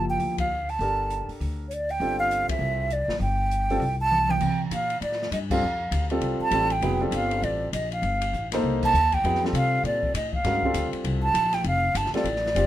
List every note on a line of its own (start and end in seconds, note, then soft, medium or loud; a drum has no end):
0.00 0.17 F#1 medium
0.00 0.43 F3 medium
0.00 0.43 A#3 medium
0.00 0.43 E4 medium
0.00 0.43 G4 medium
0.10 0.37 G5 medium
0.20 0.77 D2 medium
0.20 open hi-hat soft
0.38 0.71 F5 medium
0.38 kick medium
0.38 ride medium
0.69 1.29 A5 medium
0.69 open hi-hat soft
0.79 1.24 G1 medium
0.79 1.64 D4 soft
0.79 1.64 G4 soft
0.79 1.64 A4 soft
0.79 1.64 A#4 medium
0.79 open hi-hat soft
1.10 closed hi-hat medium
1.28 muted upright bass stroke soft
1.28 open hi-hat soft
1.40 1.98 D2 medium
1.40 open hi-hat soft
1.68 1.75 C#5 medium
1.68 closed hi-hat medium
1.73 1.92 D5 medium
1.89 2.19 G5 loud
1.89 open hi-hat soft
2.00 2.45 G1 medium
2.00 2.84 G3 medium
2.00 2.84 C4 medium
2.00 2.85 F4 medium
2.00 2.85 A4 medium
2.00 open hi-hat soft
2.19 2.47 F5 medium
2.31 closed hi-hat medium
2.49 2.94 E5 loud
2.49 muted upright bass stroke soft
2.49 kick medium
2.49 ride medium
2.59 3.05 C2 medium
2.90 3.21 D5 medium
2.90 closed hi-hat medium
3.08 3.19 A1 medium
3.08 snare medium
3.20 3.78 G1 medium
3.20 3.96 G5 medium
3.20 open hi-hat soft
3.51 closed hi-hat medium
3.70 3.81 G3 medium
3.70 3.81 C4 medium
3.70 3.81 F4 medium
3.70 3.81 A4 medium
3.70 open hi-hat soft
3.80 4.38 C2 medium
3.80 open hi-hat soft
4.01 4.32 A5 loud
4.11 high tom soft
4.29 4.60 G5 medium
4.29 high tom medium
4.40 4.70 C3 medium
4.40 kick medium
4.40 crash medium
4.71 5.00 A#2 medium
4.71 5.01 F5 medium
4.71 hi-hat pedal medium
4.71 ride medium
4.90 ride soft
5.01 5.30 A2 medium
5.01 5.30 D5 medium
5.01 ride medium
5.12 snare soft
5.22 snare soft
5.31 5.61 G2 medium
5.31 5.39 D#5 medium
5.31 hi-hat pedal medium
5.31 ride medium
5.50 5.61 G3 medium
5.50 5.62 C4 medium
5.50 5.62 F4 medium
5.50 5.62 A4 medium
5.50 6.07 F5 medium
5.50 kick medium
5.50 crash medium
5.61 5.91 F2 medium
5.91 6.20 D2 medium
5.91 hi-hat pedal medium
5.91 ride medium
6.10 6.51 G3 medium
6.10 6.51 C4 medium
6.10 6.51 F4 medium
6.10 6.51 A4 medium
6.10 ride soft
6.21 6.39 C2 medium
6.21 ride medium
6.40 6.74 A5 loud
6.40 muted upright bass stroke soft
6.51 6.81 A1 medium
6.51 6.69 G3 medium
6.51 6.69 C4 medium
6.51 6.69 F4 medium
6.51 6.70 A4 medium
6.51 hi-hat pedal medium
6.51 ride medium
6.70 7.02 G5 loud
6.70 ride soft
6.81 7.10 F1 medium
6.81 6.99 F#3 medium
6.81 6.99 B3 medium
6.81 7.00 E4 medium
6.81 7.00 G#4 medium
6.81 ride medium
7.01 7.66 G3 medium
7.01 7.66 C4 medium
7.01 7.66 F4 medium
7.01 7.66 A4 medium
7.11 7.41 G1 medium
7.11 7.46 F5 loud
7.11 hi-hat pedal medium
7.11 ride medium
7.31 ride medium
7.42 7.72 A1 medium
7.42 7.72 D5 medium
7.42 ride medium
7.73 8.01 A#1 medium
7.73 7.90 D#5 medium
7.73 hi-hat pedal medium
7.73 ride medium
7.92 8.48 F5 medium
7.92 ride soft
8.02 8.32 G1 medium
8.02 ride medium
8.22 ride medium
8.33 8.62 A1 medium
8.33 hi-hat pedal medium
8.52 8.92 A#3 medium
8.52 8.93 D#4 medium
8.52 8.93 A4 medium
8.52 8.93 C5 medium
8.52 snare soft
8.52 ride medium
8.63 8.93 C2 medium
8.82 9.15 A5 loud
8.82 kick medium
8.82 crash medium
8.93 9.23 D#2 medium
8.93 hi-hat pedal medium
9.12 9.43 G5 loud
9.12 kick medium
9.12 ride soft
9.24 9.52 F2 medium
9.24 9.41 F#3 medium
9.24 9.41 B3 soft
9.24 9.41 E4 soft
9.24 9.41 G#4 medium
9.24 ride medium
9.35 snare soft
9.44 10.08 G3 medium
9.44 10.08 C4 soft
9.44 10.08 F4 soft
9.44 10.09 A4 medium
9.44 snare soft
9.53 9.83 C3 medium
9.53 9.83 F5 medium
9.53 hi-hat pedal medium
9.53 ride medium
9.84 10.13 A#2 medium
9.84 10.13 D5 medium
9.84 ride medium
10.03 kick medium
10.14 10.43 A2 medium
10.14 10.32 D#5 medium
10.14 hi-hat pedal medium
10.14 ride medium
10.33 10.90 F5 medium
10.33 kick medium
10.44 10.73 G2 medium
10.44 10.61 G#3 medium
10.44 10.62 C#4 medium
10.44 10.62 F#4 medium
10.44 10.62 A#4 medium
10.44 snare soft
10.44 ride medium
10.63 11.29 G3 medium
10.63 11.29 C4 medium
10.63 11.29 F4 medium
10.63 11.29 A4 medium
10.63 kick medium
10.74 10.91 D2 medium
10.74 hi-hat pedal medium
10.74 ride medium
10.93 muted upright bass stroke soft
10.93 ride soft
11.04 11.33 C2 medium
11.04 ride medium
11.23 11.56 A5 loud
11.34 11.64 A#1 medium
11.34 hi-hat pedal medium
11.34 ride medium
11.53 11.65 G5 medium
11.53 snare soft
11.53 ride medium
11.64 11.94 F1 medium
11.64 11.98 F5 loud
11.64 ride medium
11.95 12.12 G1 medium
11.95 12.14 A5 loud
11.95 hi-hat pedal medium
11.95 ride medium
12.06 snare soft
12.13 12.24 G3 medium
12.13 12.25 C4 medium
12.13 12.25 F4 medium
12.13 12.25 A4 medium
12.13 12.67 D5 loud
12.13 muted upright bass stroke soft
12.13 snare soft
12.13 ride soft
12.24 12.54 A1 medium
12.24 ride medium
12.36 snare soft
12.46 snare soft
12.55 12.67 F#1 medium
12.55 12.67 G3 medium
12.55 12.67 C4 medium
12.55 12.67 F4 medium
12.55 12.67 G4 medium
12.55 hi-hat pedal medium
12.55 ride medium